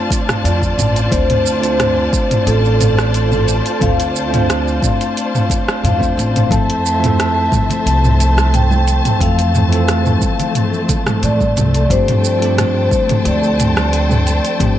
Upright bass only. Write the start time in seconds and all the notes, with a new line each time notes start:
0.44 F2
0.78 A1
1.12 D2
2.47 A1
3.81 D2
5.83 F2
6.17 A1
6.51 F2
7.86 C2
9.21 F2
11.23 A2
11.57 C2
11.90 G2
13.25 D2
14.60 G2